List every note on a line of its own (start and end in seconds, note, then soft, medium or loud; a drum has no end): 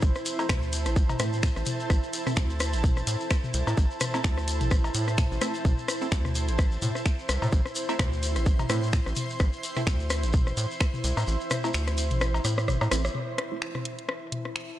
0.00 0.12 A1 loud
0.00 13.14 E4 medium
0.00 13.15 C5 medium
0.00 6.53 A5 loud
0.00 kick loud
0.00 shekere medium
0.15 cross-stick soft
0.15 shekere soft
0.26 closed hi-hat loud
0.26 shekere loud
0.39 0.45 A3 medium
0.39 0.45 C4 medium
0.39 0.45 E4 loud
0.39 cowbell loud
0.39 shekere soft
0.49 0.87 D2 medium
0.49 finger snap loud
0.49 kick loud
0.49 cross-stick medium
0.49 high tom soft
0.49 shekere medium
0.63 shekere soft
0.73 closed hi-hat loud
0.73 shekere medium
0.86 1.15 A1 loud
0.86 cross-stick soft
0.86 closed hi-hat soft
0.86 shekere soft
0.96 kick loud
0.96 shekere medium
1.09 high tom soft
1.09 cowbell medium
1.09 shekere soft
1.19 1.50 A2 medium
1.19 1.31 A3 medium
1.19 1.31 C4 medium
1.19 1.31 E4 medium
1.19 cross-stick medium
1.19 closed hi-hat medium
1.19 shekere medium
1.33 shekere soft
1.43 finger snap loud
1.43 kick loud
1.43 shekere medium
1.56 1.64 A1 medium
1.56 cross-stick soft
1.56 shekere soft
1.66 closed hi-hat loud
1.66 high tom soft
1.66 shekere medium
1.80 shekere soft
1.90 1.99 A1 loud
1.90 kick loud
1.90 cross-stick medium
1.90 shekere medium
2.03 shekere soft
2.13 closed hi-hat loud
2.13 shekere loud
2.27 2.32 A3 medium
2.27 2.32 C4 medium
2.27 2.32 E4 medium
2.27 cross-stick soft
2.27 high tom soft
2.27 shekere soft
2.36 2.75 D2 medium
2.36 finger snap loud
2.36 kick loud
2.36 shekere medium
2.50 shekere soft
2.60 cross-stick medium
2.60 closed hi-hat loud
2.60 shekere loud
2.73 3.02 A1 loud
2.73 closed hi-hat soft
2.73 shekere soft
2.84 kick loud
2.84 high tom soft
2.84 shekere medium
2.97 cross-stick soft
2.97 shekere soft
3.07 3.17 A2 medium
3.07 closed hi-hat loud
3.07 shekere medium
3.20 shekere soft
3.30 finger snap loud
3.30 kick loud
3.30 cross-stick medium
3.30 shekere medium
3.44 high tom soft
3.44 shekere soft
3.54 3.63 C2 loud
3.54 closed hi-hat loud
3.54 shekere medium
3.67 3.74 A2 loud
3.67 cross-stick soft
3.67 cowbell medium
3.67 shekere soft
3.77 3.87 A1 loud
3.77 kick loud
3.77 shekere medium
3.91 shekere soft
4.01 cross-stick medium
4.01 closed hi-hat loud
4.01 high tom soft
4.01 shekere loud
4.14 4.20 A3 medium
4.14 4.20 C4 medium
4.14 4.20 E4 loud
4.14 cowbell medium
4.14 shekere soft
4.24 4.62 D2 medium
4.24 finger snap medium
4.24 kick loud
4.24 shekere medium
4.38 cross-stick soft
4.38 shekere soft
4.48 closed hi-hat loud
4.48 shekere medium
4.61 4.90 A1 loud
4.61 closed hi-hat soft
4.61 high tom soft
4.61 shekere soft
4.71 kick loud
4.71 cross-stick medium
4.71 shekere medium
4.84 cowbell medium
4.84 shekere soft
4.95 5.25 A2 medium
4.95 closed hi-hat medium
4.95 shekere loud
5.07 cross-stick soft
5.07 shekere soft
5.18 finger snap medium
5.18 kick loud
5.18 high tom soft
5.18 shekere medium
5.31 5.39 A1 medium
5.31 shekere soft
5.41 5.53 A3 medium
5.41 5.53 C4 medium
5.41 5.53 E4 medium
5.41 cross-stick medium
5.41 closed hi-hat loud
5.41 shekere medium
5.54 shekere soft
5.65 5.74 A1 loud
5.65 kick loud
5.65 high tom soft
5.65 shekere soft
5.78 shekere soft
5.88 cross-stick medium
5.88 open hi-hat medium
5.88 shekere loud
6.01 6.07 A3 medium
6.01 6.07 C4 medium
6.01 6.07 E4 medium
6.01 shekere soft
6.12 6.50 D2 medium
6.12 finger snap medium
6.12 kick loud
6.12 shekere medium
6.25 cross-stick soft
6.25 high tom soft
6.25 shekere soft
6.35 open hi-hat medium
6.35 shekere medium
6.48 6.77 A1 loud
6.48 13.18 C6 medium
6.48 closed hi-hat soft
6.48 shekere soft
6.59 kick loud
6.59 cross-stick medium
6.59 shekere medium
6.71 shekere soft
6.82 6.91 A2 medium
6.82 open hi-hat medium
6.82 high tom soft
6.82 shekere medium
6.95 cross-stick soft
6.95 shekere soft
7.06 finger snap medium
7.06 kick loud
7.06 shekere medium
7.19 shekere soft
7.29 7.38 C2 loud
7.29 cross-stick medium
7.29 open hi-hat medium
7.29 shekere medium
7.42 7.49 A2 loud
7.42 high tom soft
7.42 cowbell medium
7.42 shekere soft
7.52 7.62 A1 loud
7.52 kick loud
7.52 shekere medium
7.66 cross-stick soft
7.66 shekere soft
7.75 open hi-hat medium
7.75 shekere loud
7.89 7.95 A3 medium
7.89 7.95 C4 medium
7.89 7.95 E4 loud
7.89 cowbell medium
7.89 shekere soft
7.99 8.37 D2 medium
7.99 finger snap medium
7.99 kick loud
7.99 cross-stick medium
7.99 high tom soft
7.99 shekere medium
8.12 shekere soft
8.23 open hi-hat medium
8.23 shekere medium
8.36 8.65 A1 loud
8.36 cross-stick soft
8.36 closed hi-hat soft
8.36 shekere soft
8.46 kick loud
8.46 shekere soft
8.59 high tom soft
8.59 cowbell medium
8.59 shekere soft
8.70 9.00 A2 medium
8.70 8.81 A3 medium
8.70 8.81 C4 medium
8.70 8.81 E4 medium
8.70 cross-stick medium
8.70 open hi-hat medium
8.70 shekere medium
8.83 shekere soft
8.93 finger snap medium
8.93 kick loud
8.93 shekere medium
9.06 9.14 A1 medium
9.06 cross-stick soft
9.06 shekere soft
9.16 open hi-hat medium
9.16 high tom soft
9.16 shekere medium
9.30 shekere soft
9.39 9.49 A1 loud
9.39 kick loud
9.39 cross-stick medium
9.39 shekere soft
9.53 shekere soft
9.63 open hi-hat medium
9.63 shekere medium
9.76 9.82 A3 medium
9.76 9.82 C4 medium
9.76 9.82 E4 medium
9.76 cross-stick soft
9.76 high tom soft
9.76 shekere soft
9.87 10.25 D2 medium
9.87 finger snap medium
9.87 kick loud
9.87 shekere medium
10.00 shekere soft
10.10 cross-stick medium
10.10 open hi-hat medium
10.10 shekere medium
10.23 10.52 A1 loud
10.23 closed hi-hat soft
10.23 shekere soft
10.33 kick loud
10.33 high tom soft
10.33 shekere soft
10.47 cross-stick soft
10.47 shekere soft
10.57 10.67 A2 medium
10.57 open hi-hat medium
10.57 shekere medium
10.71 shekere soft
10.80 finger snap medium
10.80 kick loud
10.80 cross-stick medium
10.80 shekere medium
10.94 high tom soft
10.94 shekere soft
11.04 11.13 C2 loud
11.04 open hi-hat medium
11.04 shekere medium
11.17 11.24 A2 loud
11.17 cross-stick soft
11.17 cowbell medium
11.17 shekere soft
11.27 11.37 A1 loud
11.27 shekere medium
11.40 shekere soft
11.50 cross-stick medium
11.50 open hi-hat medium
11.50 high tom soft
11.50 shekere medium
11.64 11.70 A3 medium
11.64 11.70 C4 medium
11.64 11.70 E4 loud
11.64 cowbell medium
11.64 shekere soft
11.74 12.12 D2 medium
11.74 finger snap loud
11.74 shekere medium
11.87 cross-stick soft
11.87 closed hi-hat soft
11.87 shekere soft
11.98 open hi-hat medium
11.98 shekere loud
12.10 12.40 A1 loud
12.10 closed hi-hat soft
12.10 high tom soft
12.10 shekere soft
12.21 cross-stick medium
12.21 shekere medium
12.34 cowbell medium
12.34 shekere soft
12.45 12.70 A2 medium
12.45 cross-stick medium
12.45 open hi-hat medium
12.45 shekere medium
12.58 cross-stick soft
12.58 cross-stick medium
12.58 shekere soft
12.68 12.77 G1 medium
12.68 cross-stick medium
12.68 high tom soft
12.68 shekere soft
12.81 12.89 A2 loud
12.81 cross-stick medium
12.81 cowbell medium
12.81 shekere soft
12.91 13.09 A1 loud
12.91 13.03 A3 medium
12.91 13.03 C4 medium
12.91 13.03 E4 medium
12.91 cross-stick medium
12.91 open hi-hat medium
12.91 shekere medium
13.05 cross-stick medium
13.05 shekere soft
13.15 14.79 E4 medium
13.15 high tom soft
13.38 cross-stick medium
13.38 closed hi-hat medium
13.52 13.57 A3 medium
13.52 13.57 C4 medium
13.52 13.57 E4 medium
13.56 14.79 C5 medium
13.62 14.79 A5 medium
13.62 finger snap medium
13.75 cross-stick soft
13.75 high tom soft
13.85 closed hi-hat medium
13.99 closed hi-hat soft
14.09 cross-stick medium
14.32 closed hi-hat medium
14.32 high tom soft
14.45 cross-stick soft
14.56 finger snap medium